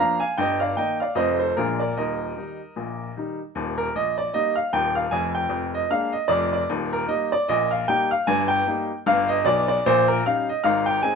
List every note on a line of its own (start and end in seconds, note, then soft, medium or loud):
0.00 0.19 F3 medium
0.00 0.20 A#3 soft
0.00 0.20 D4 soft
0.00 0.19 F5 medium
0.00 0.18 A#5 loud
0.20 0.37 F5 medium
0.20 0.35 G#5 medium
0.38 0.72 G1 medium
0.38 0.72 G2 medium
0.38 0.61 D#5 medium
0.38 0.58 G5 medium
0.60 0.77 D5 medium
0.60 0.75 F5 medium
0.76 0.99 D#3 soft
0.76 0.99 A#3 soft
0.76 1.00 D#4 soft
0.76 1.00 D#5 medium
0.76 0.97 G5 medium
1.00 1.17 D5 medium
1.00 1.15 F5 medium
1.15 1.50 F1 medium
1.15 1.50 F2 medium
1.15 1.38 F3 soft
1.15 1.39 A3 soft
1.15 1.39 C4 soft
1.15 1.38 C5 medium
1.15 1.37 D#5 medium
1.40 1.56 A4 soft
1.40 1.54 C5 medium
1.57 1.91 A#1 medium
1.57 1.91 A#2 medium
1.57 1.79 F3 soft
1.57 1.80 G#3 soft
1.57 1.80 D4 soft
1.57 1.80 F4 medium
1.57 1.77 A#4 medium
1.80 1.96 A#4 medium
1.80 1.94 D5 medium
1.97 2.31 D#1 medium
1.97 2.31 D#2 medium
1.97 3.35 A#4 medium
1.97 3.18 D#5 medium
2.37 2.59 D#3 soft
2.37 2.59 G3 soft
2.37 2.59 D#4 soft
2.76 3.10 A#1 soft
2.76 3.10 A#2 soft
3.17 3.38 D#3 soft
3.17 3.39 G3 soft
3.17 3.40 D#4 soft
3.55 3.87 D#1 medium
3.55 3.87 D#2 medium
3.78 3.92 A#4 medium
3.95 4.27 A#1 medium
3.95 4.15 D#5 medium
4.18 4.32 D5 medium
4.34 4.56 G3 soft
4.34 4.56 A#3 soft
4.34 4.56 D#4 soft
4.34 4.54 D#5 loud
4.56 4.70 F5 medium
4.73 5.05 D#1 medium
4.73 5.05 D#2 medium
4.73 4.93 G5 loud
4.95 5.10 F5 medium
5.11 5.44 F1 medium
5.11 5.44 F2 medium
5.11 5.32 G#5 medium
5.35 5.69 G5 medium
5.49 5.82 F1 medium
5.49 5.82 F2 medium
5.74 5.89 D#5 medium
5.90 6.13 G#3 soft
5.90 6.13 A#3 soft
5.90 6.13 D4 soft
5.90 6.11 F5 loud
6.12 6.28 D#5 medium
6.28 6.62 F1 medium
6.28 6.62 F2 medium
6.28 6.49 D5 loud
6.53 6.68 D5 medium
6.69 7.04 D#1 medium
6.69 7.04 D#2 medium
6.93 7.07 A#4 medium
7.07 7.30 G3 soft
7.07 7.31 A#3 soft
7.07 7.31 D#4 medium
7.07 7.29 D#5 medium
7.32 7.47 D5 loud
7.48 7.83 A#1 medium
7.48 7.83 A#2 medium
7.48 7.69 D#5 loud
7.71 7.86 F5 medium
7.88 8.10 G3 medium
7.88 8.10 A#3 soft
7.88 8.11 D#4 medium
7.88 8.08 G5 loud
8.11 8.26 F5 loud
8.27 8.62 G1 medium
8.27 8.62 G2 medium
8.27 8.48 G#5 loud
8.48 8.97 G5 loud
8.67 8.89 G3 medium
8.67 8.90 A#3 soft
8.67 8.90 D#4 medium
9.06 9.41 G1 medium
9.06 9.41 G2 medium
9.06 9.27 F5 loud
9.28 9.43 D#5 loud
9.45 9.77 B1 medium
9.45 9.78 B2 medium
9.45 9.66 D5 loud
9.68 9.83 D5 medium
9.86 10.20 A#1 medium
9.86 10.20 A#2 loud
9.86 10.06 C5 loud
10.08 10.23 A#4 medium
10.26 10.48 G3 soft
10.26 10.48 C#4 soft
10.26 10.49 D#4 medium
10.26 10.46 F5 loud
10.49 10.63 D#5 medium
10.64 10.99 G#1 medium
10.64 10.98 G#2 medium
10.64 10.84 F5 loud
10.86 11.01 G5 loud
11.02 11.15 G#3 medium
11.02 11.15 C4 medium
11.02 11.15 D#4 medium
11.02 11.15 G#5 loud